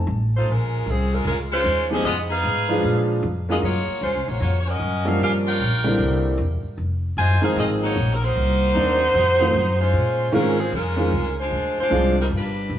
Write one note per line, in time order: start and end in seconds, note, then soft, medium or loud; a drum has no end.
0.00 0.30 A5 medium
0.07 0.45 A1 loud
0.36 0.48 A3 medium
0.36 0.48 D#4 medium
0.36 0.48 F4 medium
0.36 0.48 C5 medium
0.46 0.85 A#1 medium
0.51 0.88 G#3 medium
0.51 0.88 C#4 medium
0.51 0.88 F4 medium
0.51 0.88 A#4 medium
0.86 1.24 C2 medium
0.86 1.13 C#4 medium
0.90 1.13 F3 medium
0.90 1.14 C4 medium
0.90 1.13 G#4 medium
1.14 1.26 G#3 medium
1.14 1.26 C#4 medium
1.14 1.27 F4 medium
1.14 1.27 A#4 medium
1.25 1.63 C#2 loud
1.25 1.38 G#3 medium
1.25 1.38 C#4 medium
1.25 1.39 F4 medium
1.25 1.39 A#4 medium
1.52 1.88 G#3 loud
1.52 1.88 C#4 medium
1.52 1.88 F4 medium
1.52 1.88 C5 loud
1.64 2.03 D#2 loud
1.90 2.03 F3 medium
1.90 2.03 G#3 medium
1.90 2.03 B3 medium
1.90 2.06 C#4 medium
1.90 2.03 D#4 medium
1.90 2.03 G4 medium
1.90 2.05 G#4 medium
1.90 2.06 C5 medium
1.90 2.04 D#5 medium
2.04 2.42 F2 medium
2.04 2.17 B3 medium
2.04 2.17 F4 medium
2.04 2.17 G#4 medium
2.04 2.17 D#5 loud
2.30 2.80 D#4 loud
2.30 3.05 G#4 loud
2.30 3.05 B4 loud
2.30 3.05 F5 loud
2.43 2.82 G#2 medium
2.69 3.20 F3 medium
2.69 3.20 G#3 medium
2.69 3.20 D4 medium
2.69 3.20 F4 loud
2.69 3.20 B4 medium
2.83 3.21 A#2 medium
3.23 3.61 F2 loud
3.49 3.61 F#3 medium
3.49 3.61 G#3 medium
3.49 3.61 A#3 medium
3.49 3.56 B3 medium
3.49 3.61 C#4 medium
3.49 3.62 F4 medium
3.49 3.56 F4 medium
3.49 3.56 G#4 medium
3.49 3.56 D#5 loud
3.62 3.85 F#2 medium
3.62 4.00 A#3 medium
3.62 4.00 F4 medium
3.62 4.00 F#4 medium
3.62 4.00 C#5 loud
3.87 muted upright bass stroke soft
4.01 4.15 D#2 medium
4.01 4.26 G#3 medium
4.01 4.26 C#4 medium
4.01 4.26 F4 medium
4.01 4.26 C5 medium
4.15 4.27 C#2 medium
4.28 4.40 A#1 medium
4.28 4.41 A#3 medium
4.28 4.41 F4 medium
4.28 4.41 F#4 medium
4.28 4.41 C#5 medium
4.40 4.79 F2 loud
4.40 4.57 A#3 medium
4.40 4.57 F4 medium
4.40 4.57 F#4 medium
4.40 4.57 C#5 medium
4.61 4.68 C#5 medium
4.67 5.06 C#4 medium
4.67 5.06 F#4 medium
4.67 5.06 A#4 loud
4.67 5.06 D#5 loud
4.79 5.18 F#2 medium
5.05 5.56 F3 medium
5.05 5.56 G3 medium
5.05 5.56 A#3 medium
5.05 5.56 C#4 medium
5.05 5.21 C#4 medium
5.05 5.57 F4 medium
5.05 5.21 F#4 medium
5.05 5.20 A#4 medium
5.05 5.21 F5 loud
5.19 5.58 G2 loud
5.19 5.33 C#4 medium
5.19 5.33 G4 loud
5.19 5.33 A#4 medium
5.19 5.33 F5 loud
5.47 5.96 F4 loud
5.47 6.21 A#4 loud
5.47 5.96 C#5 medium
5.47 6.21 G5 loud
5.60 5.98 A#1 medium
5.84 6.35 D3 medium
5.84 6.35 G3 medium
5.84 6.35 A#3 medium
5.84 6.35 C4 medium
5.84 6.36 E4 medium
5.98 6.37 C2 loud
6.38 6.61 E1 loud
6.63 muted upright bass stroke soft
6.78 7.16 F1 medium
7.17 7.40 F#1 medium
7.17 7.41 F4 loud
7.17 7.41 C5 loud
7.17 7.41 D#5 medium
7.17 7.41 G#5 loud
7.41 7.92 D#3 medium
7.41 7.93 F3 medium
7.41 7.93 G#3 medium
7.41 7.93 C4 medium
7.41 7.93 D#4 medium
7.41 7.56 D#4 medium
7.41 7.56 G#4 medium
7.41 7.56 C5 medium
7.41 7.56 F5 medium
7.41 muted upright bass stroke soft
7.56 7.95 G#1 loud
7.56 7.69 C4 medium
7.56 7.69 F4 medium
7.56 7.69 G#4 medium
7.56 7.69 D#5 loud
7.83 8.11 A#3 medium
7.83 8.11 D#4 medium
7.83 8.11 F#4 medium
7.83 8.11 C#5 loud
7.96 8.34 A#1 loud
8.14 8.22 A#4 medium
8.23 9.15 A#3 loud
8.23 9.80 D#4 loud
8.23 9.80 F#4 loud
8.23 9.79 C5 loud
8.35 8.74 C2 medium
8.74 9.13 D#2 medium
8.74 8.97 D#3 medium
8.74 8.97 F#3 medium
8.74 8.97 A#3 medium
8.74 8.98 C4 medium
8.74 8.98 D4 medium
9.14 9.53 F2 loud
9.40 9.53 D#3 medium
9.40 9.53 F#3 medium
9.40 9.53 A3 medium
9.40 9.53 C4 medium
9.40 9.53 F4 medium
9.53 9.92 F#2 loud
9.80 10.30 G#3 medium
9.80 10.30 C#4 medium
9.80 10.30 F4 medium
9.80 10.30 C5 loud
9.93 10.32 A#2 medium
10.32 10.71 G#2 medium
10.32 10.55 D#3 loud
10.32 10.55 G#3 medium
10.32 10.59 G#3 medium
10.32 10.55 C4 medium
10.32 10.56 C#4 medium
10.32 10.59 C#4 medium
10.32 10.56 F4 loud
10.32 10.59 F4 medium
10.32 10.59 A#4 loud
10.60 10.74 F3 medium
10.60 10.73 C4 medium
10.60 10.73 C#4 medium
10.60 10.73 G#4 medium
10.72 11.11 F2 loud
10.72 11.35 G#3 medium
10.72 11.34 C#4 medium
10.72 11.34 F4 medium
10.72 11.35 A#4 loud
10.96 11.10 D#3 medium
10.96 11.10 G#3 medium
10.96 11.10 C4 medium
10.96 11.10 C#4 medium
10.96 11.10 F4 medium
11.12 11.50 C#2 loud
11.40 11.79 G#3 medium
11.40 11.78 D4 loud
11.40 11.79 F4 medium
11.40 11.78 C5 medium
11.51 11.75 D2 medium
11.77 12.16 G#3 medium
11.77 12.16 C5 loud
11.77 muted upright bass stroke soft
11.81 12.16 D4 loud
11.81 12.16 F4 medium
11.90 12.30 C2 loud
11.90 12.13 F3 medium
11.90 12.13 G#3 medium
11.90 12.13 C4 medium
11.90 12.13 D4 medium
11.90 12.14 F4 medium
12.21 12.27 G3 medium
12.21 12.26 C4 medium
12.21 12.27 D#4 medium
12.21 12.27 A#4 medium
12.31 12.69 G1 loud
12.36 12.79 G3 medium
12.36 12.79 D4 medium
12.36 12.79 F4 medium
12.36 12.79 B4 medium
12.70 12.79 B1 medium